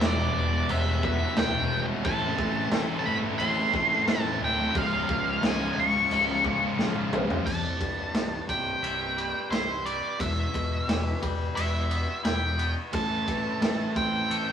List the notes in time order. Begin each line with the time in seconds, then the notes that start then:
Already playing: E2 B2 E3
0.00 E1 E2 B2 E3 G3 B3 E4, snare, crash
0.05 D5
0.34 E1 E3 G3 B3 E4
0.39 D5
0.52 E3 G3 B3 E4
0.68 E1 E2 B2 E3 E5, crash
1.02 E3 G3 B3 E4 E5, kick
1.20 E3 G3 B3 E4
1.36 D1 E2 B2 E3 G3 B3 E4 G5, snare, crash
1.54 E3 G3 B3 E4
1.71 G#1 E3 G3 B3 E4
1.88 E3 G3 B3 E4
2.04 A1 A2 E3 A3 C4 E4 A4 A5, kick, crash
2.37 A1 A3 C4 E4 A4, muted distorted electric guitar stroke, kick
2.56 A3 C4 E4 A4
2.71 A1 A2 E3 A3 C4 E4 A4, snare, crash
2.87 A3 C4 E4 A4
2.99 A5
3.06 G1 A3 C4 E4 A4 B5
3.23 A3 C4 E4 A4
3.38 A1 A2 E3 A3 C6, crash
3.55 A3 C4 E4 A4
3.73 A1 A3 C4 E4 A4, kick
3.91 A3 C4 E4 A4
4.07 A1 A2 E3 A3 C4 E4 A4 A5, snare, crash
4.24 A3 C4 E4 A4
4.41 D1 A3 C4 E4 A4 G5
4.57 A3 C4 E4 A4
4.74 C#1 C#2 G#2 C#3 F3 F4 F5, kick, crash
5.08 C#1 G#2 C#3 F3 F4, muted distorted electric guitar stroke, kick
5.24 C#3 F3 F4
5.42 C#1 C#2 G#2 C#3 F3 F4, snare, crash
5.46 G#5
5.58 C#3 F3 F4
5.76 C#1 G#2 C#3 F3 F4 C#6
5.92 C#3 F3 F4
6.10 C#1 C#2 G#2 C#3, crash
6.25 F3 F4
6.29 C#3
6.44 G#2 C#3 F3 F4, kick
6.59 C#3 F3 F4
6.76 A#1 C#2 G#2 C#3 F3 F4, snare
6.94 C#3 F3 F4
7.10 C#1 G#2 C#3 F3 F4, mid tom
7.28 C#3 F3 F4, floor tom
7.46 C1 C2 A5, kick, crash
7.80 C1 G2, kick, ride
8.14 C1 G2, snare, ride
8.49 C1 C3 G5, kick, ride
8.82 C1 E4, ride
9.17 G3, ride
9.50 C1 E4 C5, snare, ride
9.85 G3 D5, ride
10.19 E1 E2 E5, kick, ride
10.53 E1 B2, kick, ride
10.87 E1 E3, snare, ride
11.22 E1 G3, kick, ride
11.55 E1 E4 E5, ride
11.90 B3, ride
12.23 E1 E4 G5, snare, ride
12.59 B3, ride
12.92 A1 A2 E3 A3 C4 E4 A4 A5, kick, ride
13.09 A3 C4 E4 A4
13.26 A1 E3 A3 C4 E4 A4, kick, ride
13.44 A3 C4 E4 A4
13.61 A1 A2 E3 A3 C4 E4 A4, snare, ride
13.96 A1 A3 C4 E4 A4 G5, kick, ride
14.30 A1 A4, ride
14.46 C4 E4 A4